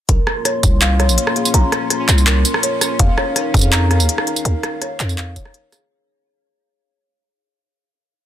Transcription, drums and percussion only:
0.09 kick loud
0.09 closed hi-hat medium
0.27 cross-stick medium
0.45 cross-stick soft
0.45 closed hi-hat medium
0.63 kick loud
0.63 closed hi-hat soft
0.63 tambourine medium
0.81 clap loud
0.81 closed hi-hat medium
1.00 cross-stick medium
1.00 closed hi-hat soft
1.09 tambourine soft
1.18 closed hi-hat medium
1.27 cross-stick medium
1.36 closed hi-hat soft
1.45 tambourine soft
1.54 closed hi-hat medium
1.72 cross-stick medium
1.72 closed hi-hat soft
1.90 cross-stick soft
1.90 closed hi-hat medium
2.09 clap medium
2.09 closed hi-hat soft
2.09 tambourine medium
2.18 tambourine soft
2.27 clap loud
2.27 closed hi-hat medium
2.45 closed hi-hat soft
2.45 tambourine medium
2.54 cross-stick medium
2.63 closed hi-hat medium
2.81 cross-stick medium
2.81 closed hi-hat soft
2.81 tambourine medium
2.99 kick loud
2.99 closed hi-hat medium
3.18 cross-stick medium
3.36 cross-stick soft
3.36 closed hi-hat medium
3.54 kick loud
3.54 closed hi-hat soft
3.54 tambourine soft
3.56 tambourine soft
3.59 tambourine soft
3.61 tambourine medium
3.72 clap loud
3.72 closed hi-hat medium
3.91 cross-stick medium
3.91 closed hi-hat soft
4.00 tambourine soft
4.09 closed hi-hat medium
4.18 cross-stick medium
4.27 closed hi-hat soft
4.36 tambourine soft
4.45 closed hi-hat medium
4.63 cross-stick medium
4.63 closed hi-hat soft
4.82 cross-stick soft
4.82 closed hi-hat medium
5.00 clap medium
5.00 closed hi-hat soft
5.00 tambourine medium
5.09 tambourine soft
5.18 clap loud
5.18 closed hi-hat medium
5.36 kick medium
5.36 closed hi-hat soft
5.36 tambourine medium
5.45 cross-stick medium
5.54 closed hi-hat medium
5.72 cross-stick medium
5.72 closed hi-hat soft
5.72 tambourine medium

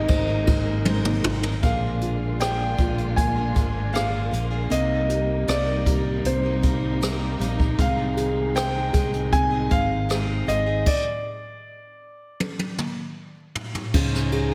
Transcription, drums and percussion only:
0.08 kick medium
0.08 ride medium
0.47 kick medium
0.47 ride medium
0.85 high tom medium
1.05 mid tom medium
1.24 mid tom medium
1.43 floor tom medium
1.63 kick loud
1.63 closed hi-hat medium
2.01 closed hi-hat medium
2.40 cross-stick medium
2.40 closed hi-hat medium
2.78 kick medium
2.78 closed hi-hat medium
2.98 closed hi-hat soft
3.17 kick medium
3.17 closed hi-hat medium
3.56 kick medium
3.56 closed hi-hat medium
3.95 cross-stick medium
3.95 closed hi-hat medium
4.33 closed hi-hat medium
4.71 closed hi-hat medium
5.09 closed hi-hat medium
5.48 cross-stick loud
5.48 closed hi-hat medium
5.86 kick medium
5.86 closed hi-hat medium
6.25 closed hi-hat medium
6.63 kick medium
6.63 closed hi-hat medium
7.02 cross-stick medium
7.02 closed hi-hat medium
7.41 closed hi-hat medium
7.60 kick medium
7.79 kick loud
7.79 closed hi-hat medium
8.17 closed hi-hat medium
8.56 cross-stick loud
8.56 closed hi-hat medium
8.94 kick medium
8.94 closed hi-hat medium
9.13 closed hi-hat soft
9.32 kick medium
9.32 closed hi-hat medium
9.71 kick medium
9.71 closed hi-hat medium
10.10 cross-stick medium
10.10 closed hi-hat medium
10.48 closed hi-hat medium
10.86 kick medium
10.86 crash medium
12.40 high tom medium
12.59 high tom medium
12.78 mid tom medium
13.55 floor tom medium
13.75 floor tom medium
13.94 kick loud
13.94 crash loud
14.15 snare soft
14.32 ride medium

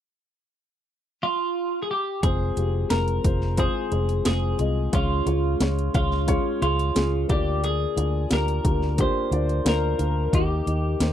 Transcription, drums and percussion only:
2.23 kick medium
2.23 closed hi-hat medium
2.57 closed hi-hat medium
2.90 snare medium
2.90 closed hi-hat medium
3.08 closed hi-hat soft
3.24 kick medium
3.24 closed hi-hat medium
3.42 snare soft
3.57 kick medium
3.57 closed hi-hat medium
3.92 closed hi-hat medium
4.09 closed hi-hat soft
4.25 snare medium
4.25 closed hi-hat medium
4.59 closed hi-hat medium
4.93 kick medium
4.93 closed hi-hat medium
5.27 closed hi-hat medium
5.60 snare medium
5.60 closed hi-hat medium
5.79 closed hi-hat soft
5.94 kick medium
5.94 closed hi-hat medium
6.12 snare soft
6.28 kick medium
6.28 closed hi-hat medium
6.62 closed hi-hat medium
6.79 closed hi-hat soft
6.96 snare loud
6.96 closed hi-hat medium
7.29 kick medium
7.29 closed hi-hat medium
7.64 closed hi-hat medium
7.97 closed hi-hat medium
8.31 snare medium
8.31 closed hi-hat medium
8.48 closed hi-hat soft
8.65 kick medium
8.65 closed hi-hat medium
8.82 snare soft
8.98 kick medium
8.98 closed hi-hat medium
9.32 closed hi-hat medium
9.49 closed hi-hat soft
9.66 snare loud
9.66 closed hi-hat medium
9.99 closed hi-hat medium
10.33 kick medium
10.33 closed hi-hat medium
10.67 closed hi-hat medium
11.00 snare medium
11.00 closed hi-hat medium

